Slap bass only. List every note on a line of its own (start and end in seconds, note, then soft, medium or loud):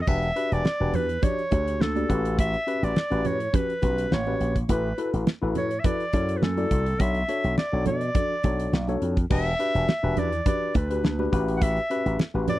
0.07 0.30 E1 loud
0.52 0.62 E1 medium
0.80 0.91 E1 medium
0.94 1.17 E2 loud
1.52 1.74 D2 medium
1.81 2.03 D2 medium
2.10 2.55 A1 loud
2.83 2.93 A1 loud
3.11 3.22 A1 loud
3.25 3.47 A2 loud
3.83 4.05 B1 medium
4.12 4.34 A1 loud
4.40 4.63 A#1 medium
4.69 4.92 A1 loud
5.13 5.24 A1 loud
5.42 5.53 A1 medium
5.56 5.78 A2 loud
6.13 6.36 F#2 medium
6.42 6.65 F#2 medium
6.71 6.94 C2 medium
7.00 7.22 B1 loud
7.44 7.55 B1 medium
7.73 7.88 B1 medium
7.86 8.09 B2 medium
8.44 8.67 B1 medium
8.73 8.95 B1 loud
9.02 9.24 F2 medium
9.31 9.53 E1 loud
9.75 9.85 E1 medium
10.03 10.14 E1 medium
10.17 10.40 E2 loud
10.75 10.97 D2 medium
11.04 11.26 D2 medium
11.33 11.78 A1 loud
12.06 12.16 A1 loud
12.34 12.45 A1 loud
12.48 12.59 A2 loud